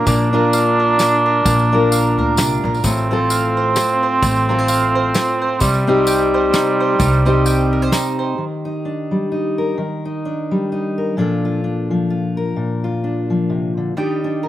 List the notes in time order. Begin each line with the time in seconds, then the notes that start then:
Already playing: D4 F4 A#4 F5
0.06 A#1 A#2 A#3 D4, kick, closed hi-hat, tambourine
0.33 D4 F4 A#4
0.53 F5, closed hi-hat, tambourine
0.80 A#4
0.99 D4, snare, tambourine
1.26 A#4
1.45 A#1 A#2 A#3, kick, closed hi-hat, tambourine
1.59 tambourine
1.72 D4 F4 A#4
1.92 F5, closed hi-hat, tambourine
2.18 D2 A#4
2.37 C2 C3 D4, snare, closed hi-hat, tambourine
2.64 A#1 A#2 A#4
2.74 tambourine
2.83 A1 A2 A3 C4, kick, closed hi-hat, tambourine
3.11 C4 F4 A4 C5
3.30 F5, closed hi-hat, tambourine
3.57 C5
3.76 C4 F4, snare, closed hi-hat, tambourine
4.03 C5
4.22 A1 A2 A3, kick, closed hi-hat, tambourine
4.49 C4 F4 A4 A#4
4.59 C5
4.68 F5, closed hi-hat, tambourine
4.95 C5
5.14 C4 F4, snare, closed hi-hat, tambourine
5.42 C5
5.60 C2 C3 G3, kick, closed hi-hat, tambourine
5.87 C4 D#4 G4 C5
6.07 G5, closed hi-hat, tambourine
6.34 C5
6.53 C4 D#4, snare, closed hi-hat, tambourine
6.80 C5
6.99 C2 C3 G3, kick, closed hi-hat, tambourine
7.25 C4 D#4 G4 C5, tambourine
7.46 G5, closed hi-hat, tambourine
7.73 A#4
7.82 C5
7.92 C4 D#4, snare, tambourine
8.19 C5
8.38 D#3
8.65 D#4
8.85 D4
9.11 G3
9.32 D#4
9.58 A#4
9.78 D#3
10.05 D#4
10.25 D4
10.51 G3
10.72 D#4
10.98 A#4
11.17 A#2 F3 D4 F4 A4
11.45 F4
11.64 D4
11.91 F3
12.10 F4
12.37 A#4
12.56 A#2
12.84 F4
13.04 D4
13.30 F3
13.50 C3
13.77 D3
13.97 D#3 G3 D4 D#4 G4 G5
14.24 D4
14.43 A#4